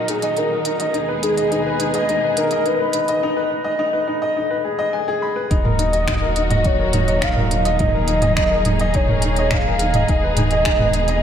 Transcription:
Already playing: A#2 D#3 F#3 D#4 F#4 A#4 D#5
0.08 D#4 G#4, closed hi-hat
0.22 D#5, closed hi-hat
0.37 D#4 A#4, closed hi-hat
0.52 A#4
0.65 D#4, closed hi-hat
0.80 D#5, closed hi-hat
0.94 D#2 B2 G#3 D#4 G#4, closed hi-hat
1.08 B4
1.22 D#4 G#4, closed hi-hat
1.37 D#5, closed hi-hat
1.51 D#4 B4, closed hi-hat
1.66 B4
1.80 D#4, closed hi-hat
1.94 D#5, closed hi-hat
2.09 D#4, closed hi-hat
2.24 B4
2.37 D#4 A#4, closed hi-hat
2.51 D#5, closed hi-hat
2.65 D#4 B4, closed hi-hat
2.80 B4
2.93 D#4, closed hi-hat
3.08 D#5, closed hi-hat
3.23 D#4
3.37 B4
3.51 D#4
3.64 D#5
3.79 D#4
3.93 B4
4.07 D#4
4.22 D#5
4.37 D#4
4.51 B4
4.65 G#4
4.79 D#5
4.93 G#5
5.08 G#4
5.22 B5
5.36 B4
5.51 D#1 A#2 D#3 F#3 D#4 F#4 D#5, kick, closed hi-hat
5.64 A#4, mid tom
5.79 D#4, closed hi-hat
5.93 D#5, closed hi-hat
6.07 D#4, finger snap, kick, closed hi-hat, mid tom
6.22 A#4
6.36 D#4, closed hi-hat
6.50 D#5, closed hi-hat, mid tom
6.64 D#4 C#5, kick, closed hi-hat
6.79 A#4
6.93 D#4, closed hi-hat, mid tom
7.08 D#5, closed hi-hat
7.21 D#4 F5, finger snap, kick, closed hi-hat
7.36 A#4, mid tom
7.51 D#4, closed hi-hat
7.65 D#5, closed hi-hat
7.79 D#4 G#4 D#5, kick, closed hi-hat, mid tom
7.94 A#4
8.08 D#4, closed hi-hat
8.22 D#5, closed hi-hat, mid tom
8.37 D#4, finger snap, kick, closed hi-hat
8.51 A#4
8.65 D#4, closed hi-hat, mid tom
8.80 D#5, closed hi-hat
8.89 D#5
8.94 D#4 C#5, kick, closed hi-hat
9.08 A#4, mid tom
9.22 D#4, closed hi-hat
9.36 D#5, closed hi-hat
9.51 D#4 F5, finger snap, kick, closed hi-hat, mid tom
9.67 A#4
9.79 D#4, closed hi-hat
9.94 D#5, closed hi-hat, mid tom
10.08 D#1 B2 G#3 D#4 D#5, kick, closed hi-hat
10.23 B4
10.37 D#4, closed hi-hat, mid tom
10.51 D#5, closed hi-hat
10.65 D#4, finger snap, kick, closed hi-hat
10.79 B4, mid tom
10.94 D#4, closed hi-hat
11.08 D#5, closed hi-hat

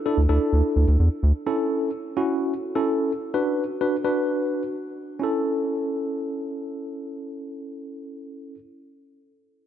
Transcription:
0.06 D4 E4 A4
0.18 D2
0.29 D2 D4 E4 A4
0.53 D2
0.76 D2
0.88 D2
1.00 E2
1.23 D2
1.46 C#4 E4 A4
2.17 C#4 E4 F#4
2.75 C#4 E4 A4
3.34 D4 F#4 B4
3.81 D4 F#4 B4
4.04 D4 F#4 B4
5.19 C#4 E4
5.23 A4

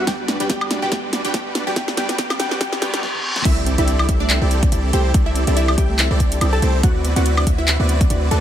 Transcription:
Already playing: riser
0.07 E2 G3 B3 D4 F#4 G4 B4 D5 G5, kick, snare, closed hi-hat
0.28 D4, snare, closed hi-hat
0.40 E2 G3 D4 F#4 G4 B4 D5 G5, closed hi-hat
0.49 E2 B3 G4 G5, kick, snare, closed hi-hat
0.61 high woodblock
0.71 D4, snare, closed hi-hat
0.82 E2 G3 D4 F#4 G4 B4 D5 G5
0.92 E2 G3 B3 D4 G4 D5 G5, kick, snare, closed hi-hat
1.13 D4, snare, closed hi-hat
1.25 E2 G3 D4 F#4 G4 B4 D5 G5, closed hi-hat
1.34 E2 G3 B3 D4 F#4 G4 B4 D5 G5, kick, snare, closed hi-hat
1.55 D4, snare, closed hi-hat
1.67 E2 G3 D4 F#4 G4 B4 D5 G5
1.76 E2 G3 B3 D4 F#4 G4 B4 D5 G5, kick, snare, closed hi-hat
1.88 snare
1.97 E2 G3 B3 D4 F#4 G4 B4 D5 G5, snare, closed hi-hat
2.09 snare, closed hi-hat
2.18 E2 G3 B3 D4 G4 B4 D5 G5, kick, snare, closed hi-hat
2.30 snare, high woodblock
2.40 E2 G3 B3 D4 F#4 G4 B4 D5 G5, snare, closed hi-hat
2.51 snare
2.61 E2 G3 B3 D4 G4 B4 D5 G5, kick, snare, closed hi-hat, reverse cymbal
2.73 snare
2.82 E2 G3 B3 D4 F#4 G4 B4 D5 G5, snare, closed hi-hat
2.94 snare, closed hi-hat
3.03 snare
3.15 high tom
3.36 snare
3.45 C2 A3 C4 E4 G4 A4 D5 E5, kick, closed hi-hat, crash, impact
3.66 C4, closed hi-hat
3.78 C2 C4 D4 E4 G4 A4 D5 E5, closed hi-hat
3.88 closed hi-hat
3.99 E4, high woodblock
4.09 C2 C4 E4 G4 A4 E5, kick, closed hi-hat
4.20 A3 D4 D5
4.30 clap, closed hi-hat
4.41 C2 C4 E4 G4 A4 D5
4.51 closed hi-hat
4.63 D4, kick, closed hi-hat
4.72 C2 C4 E4 G4 A4 D5, closed hi-hat
4.93 C2 A3 C4 E4 G4 A4 C5 G5, closed hi-hat
5.14 C2 A3 D5, kick, closed hi-hat
5.26 E4 E5
5.35 C4, closed hi-hat
5.47 C2 C4 D4 E4 G4 A4 D5, closed hi-hat
5.57 E4 E5, closed hi-hat
5.68 E4, high woodblock
5.78 C2 C4 E4 G4 A4 E5 G5, kick, closed hi-hat
5.90 A3
5.99 clap, closed hi-hat
6.11 C2 C4 E4 G4 A4 D5
6.20 kick, closed hi-hat
6.32 D4, closed hi-hat
6.41 C2 C4 E4 G4 A4 D5, closed hi-hat, high woodblock
6.53 A4 A5
6.62 C2 A3 C4 E4 G4 A4 C5, closed hi-hat
6.83 D2 A3 F#4 D5 F#5, kick, closed hi-hat
7.05 B3, closed hi-hat
7.16 D2 C4 E4 F#4 B4 D5 F#5, closed hi-hat
7.26 closed hi-hat
7.37 D4, high woodblock
7.47 D2 C4 E4 F#4 B4 E5, kick, closed hi-hat
7.58 A3 E4 E5
7.68 clap, closed hi-hat
7.80 D2 B3 C4 E4 F#4 B4 D5
7.89 closed hi-hat
8.01 C4, kick, closed hi-hat
8.10 D2 C4 D4 E4 F#4 B4 D5, closed hi-hat
8.31 D2 A3 C4 E4 F#4 A4 B4 D5 A5, closed hi-hat

